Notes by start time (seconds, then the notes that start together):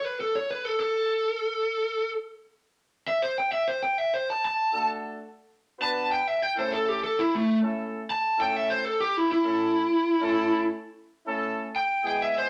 0.05 B4
0.20 A4
0.35 C#5
0.51 B4
0.65 A4
0.80 A4
3.08 E5
3.22 C5
3.38 G5
3.52 E5
3.68 C5
3.83 G5
3.98 E5
4.14 C5
4.30 A5
4.45 A5
4.72 A3 D4 F#4 A4
5.79 B3 D4 F#4 B4 A5
6.12 G5
6.27 E5
6.42 G5
6.55 A3 C#4 E4 A4 C5
6.73 A4
6.88 G4
7.04 A4
7.19 E4
7.35 A3
7.61 A3 C#4 E4 A4
8.10 A5
8.37 A3 C#4 E4 A4 G5
8.56 E5
8.70 C5
8.85 A4
9.00 G4
9.17 E4
9.32 E4
9.44 A3 C#4 E4 A4
10.20 A3 C#4 E4 A4
11.26 A3 C#4 E4 A4
11.76 G5
12.03 G#3 B3 E4 G#4
12.07 G5
12.22 E5
12.38 C5